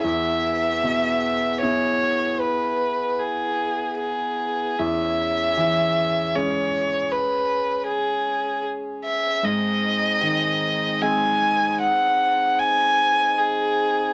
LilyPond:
<<
  \new Staff \with { instrumentName = "Violin" } { \time 3/4 \key e \major \tempo 4 = 77 e''2 cis''4 | b'4 gis'4 gis'4 | e''2 cis''4 | b'4 gis'4 r8 e''8 |
dis''2 gis''4 | fis''4 gis''4 gis'4 | }
  \new Staff \with { instrumentName = "Harmonium" } { \time 3/4 \key e \major <b e' gis'>2.~ | <b e' gis'>2. | <cis' gis'>2.~ | <cis' gis'>2. |
<bis dis' gis'>2.~ | <bis dis' gis'>2. | }
  \new Staff \with { instrumentName = "Felt piano" } { \clef bass \time 3/4 \key e \major e,4 b,4 <b e' gis'>4~ | <b e' gis'>2. | e,4 e4 <gis cis' gis'>4~ | <gis cis' gis'>2. |
gis,4 dis4 <gis bis gis'>4~ | <gis bis gis'>2. | }
>>